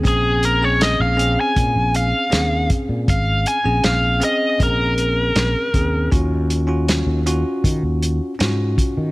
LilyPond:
<<
  \new Staff \with { instrumentName = "Lead electric guitar" } { \time 4/4 \key bes \minor \tempo 4 = 79 aes'8 bes'16 des''16 ees''16 f''8 aes''8. f''4 r8 | f''8 aes''8 f''8 ees''8 bes'2 | r1 | }
  \new Staff \with { instrumentName = "Tine electric piano" } { \time 4/4 \key bes \minor <c' des' aes'>8. <c' des' aes'>8. <c' des' aes'>4. <c' des' aes'>4~ | <c' des' aes'>8. <c' des' aes'>8. <c' des' aes'>8 <c' des' aes'>4. <c' des' aes'>8 | <des' f' ges'>8. <des' f' ges'>8. <des' f' ges'>4. <des' f' ges'>4 | }
  \new Staff \with { instrumentName = "Fretless electric bass" } { \clef bass \time 4/4 \key bes \minor bes,,4~ bes,,16 bes,,8 r16 bes,16 bes,,8 r16 ees,8 r16 bes,16 | aes,,8 r16 bes,,16 bes,,8 r8 bes,,4 bes,,16 r16 ees,8 | ees,4~ ees,16 ees,8 r16 ees16 ees,8 r16 aes,8 r16 ees16 | }
  \new DrumStaff \with { instrumentName = "Drums" } \drummode { \time 4/4 <hh bd>8 hh8 <hh sn>8 hh8 <hh bd>8 hh8 <hh sn>8 <hh bd>8 | <hh bd>8 hh8 <hh sn>8 hh8 <hh bd>8 hh8 <hh sn>8 <hh bd>8 | <hh bd>8 hh8 <hh sn>8 hh8 <hh bd>8 hh8 <hh sn>8 <hh bd>8 | }
>>